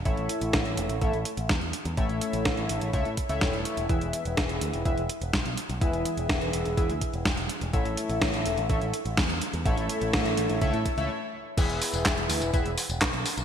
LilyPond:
<<
  \new Staff \with { instrumentName = "Analog polysynth" } { \time 4/4 \key a \major \tempo 4 = 125 <a e' a' cis'' e''>2 <a e' a' cis'' e''>16 r4. r16 | <a e' a' cis'' e''>2 <a e' a' cis'' e''>16 r8 <a e' a' cis'' e''>4~ <a e' a' cis'' e''>16 | <e e' gis' b' e''>2 <e e' gis' b' e''>16 r4. r16 | <e e' gis' b' e''>2 <e e' gis' b' e''>16 r4. r16 |
<a e' a' cis'' e''>2 <a e' a' cis'' e''>16 r4. r16 | <a e' a' cis'' e''>2 <a e' a' cis'' e''>16 r8 <a e' a' cis'' e''>16 r4 | <e e' gis' b' e''>2 <e e' gis' b' e''>16 r4. r16 | }
  \new Staff \with { instrumentName = "Picked electric bass" } { \clef bass \time 4/4 \key a \major a,,16 a,,16 r16 a,,16 a,,16 a,,16 e,,16 a,,16 a,,16 a,,16 r16 a,,16 e,16 e,16 r16 e,16 | a,,16 a,,16 r16 a,,16 a,,16 a,,16 a,,16 a,,16 cis,16 a,16 r16 cis,16 e,,16 e,,16 r16 e,,16 | e,,16 e,,16 r16 e,,16 e,,16 e,,16 d,16 e,,16 e,,16 e,,16 r16 e,,16 b,,16 b,,16 r16 b,,16 | e,,16 e,,16 r16 e,,16 r16 e,,16 e,,16 e,,16 e,,16 d,16 r16 e,,16 r16 e,,16 r16 e,,16 |
a,,16 a,,16 r16 a,,16 a,,16 a,,16 e,,16 a,,16 a,,16 a,,16 r16 a,,16 e,16 e,16 r16 e,16 | a,,16 a,,16 r16 a,,16 a,,16 a,,16 a,,16 a,,16 cis,16 a,16 r16 cis,16 r4 | e,,16 e,,16 r16 e,,16 r16 e,,16 d,16 e,,16 e,,16 e,,16 r16 e,,16 b,,16 b,,16 r16 b,,16 | }
  \new DrumStaff \with { instrumentName = "Drums" } \drummode { \time 4/4 <hh bd>16 hh16 hh16 hh16 <hh bd sn>16 hh16 hh16 hh16 <hh bd>16 hh16 hh16 hh16 <hh bd sn>16 hh16 hh16 hh16 | <hh bd>16 hh16 hh16 hh16 <hh bd sn>16 hh16 hh16 hh16 <hh bd>16 hh16 <hh bd>16 hh16 <hh bd sn>16 hh16 hh16 hh16 | <hh bd>16 hh16 hh16 hh16 <hh bd sn>16 hh16 hh16 hh16 <hh bd>16 hh16 hh16 hh16 <hh bd sn>16 hh16 hh16 hh16 | <hh bd>16 hh16 hh16 hh16 <hh bd sn>16 hh16 hh16 hh16 <hh bd>16 hh16 <hh bd>16 hh16 <hh bd sn>16 hh16 hh16 hh16 |
<hh bd>16 hh16 hh16 hh16 <hh bd sn>16 hh16 hh16 hh16 <hh bd>16 hh16 hh16 hh16 <hh bd sn>16 hh16 hh16 hh16 | <hh bd>16 hh16 hh16 hh16 <hh bd sn>16 hh16 hh16 hh16 <hh bd>16 hh16 <hh bd>16 hh16 r4 | <cymc hh bd tamb>16 hh16 <hho tamb>16 <hh tamb>16 <hc hh bd sn tamb>16 hh16 <hho tamb>16 <hh tamb>16 <hh bd tamb>16 hh16 <hho tamb>16 <hh tamb>16 <hc hh bd sn tamb>16 hh16 <hho tamb>16 <hh tamb>16 | }
>>